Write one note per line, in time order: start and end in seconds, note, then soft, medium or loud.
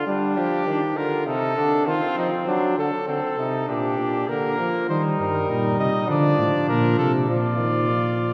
0.07 0.39 G3 medium
0.07 0.66 D4 medium
0.37 0.66 F3 medium
0.37 0.99 G4 medium
0.67 0.96 D#3 medium
0.67 0.80 D4 medium
0.97 1.28 D3 medium
0.97 1.28 F4 medium
0.97 1.26 A#4 medium
1.27 1.56 C3 medium
1.27 1.56 D#4 medium
1.27 1.89 A4 medium
1.57 1.86 D3 medium
1.57 1.86 D4 medium
1.87 2.00 D#3 medium
1.87 2.78 C4 medium
1.87 2.17 F4 medium
2.17 2.46 F3 medium
2.17 2.31 D#4 medium
2.47 2.77 F#3 medium
2.47 2.77 D4 medium
2.77 2.91 D3 medium
2.77 3.08 A4 medium
3.07 3.21 D3 medium
3.07 3.36 C4 medium
3.07 3.68 A4 medium
3.38 3.68 C3 medium
3.38 3.69 D#4 medium
3.68 3.98 A#2 medium
3.68 4.28 D4 medium
3.68 4.30 G4 medium
3.99 4.30 A#2 medium
4.28 4.58 D3 medium
4.28 4.88 A#3 medium
4.28 4.89 A#4 medium
4.59 4.89 F3 medium
4.89 5.17 D#3 medium
4.89 6.11 G3 medium
4.89 5.46 D#4 medium
4.89 5.03 C5 medium
5.19 5.48 G2 medium
5.19 5.79 A#4 medium
5.49 5.78 A#2 medium
5.49 6.10 D#4 medium
5.79 5.93 C3 medium
5.79 6.09 D#5 medium
6.08 6.38 D3 medium
6.08 7.29 F3 medium
6.08 7.29 D4 medium
6.08 6.68 D5 medium
6.39 6.52 A2 medium
6.69 6.98 A#2 medium
6.69 6.98 A#4 medium
6.99 7.29 C3 medium
6.99 7.12 A4 medium
7.29 8.33 A#2 medium
7.29 7.61 F3 medium
7.29 8.33 F4 medium
7.29 8.33 D5 medium
7.60 7.90 D#3 medium
7.90 8.33 F3 medium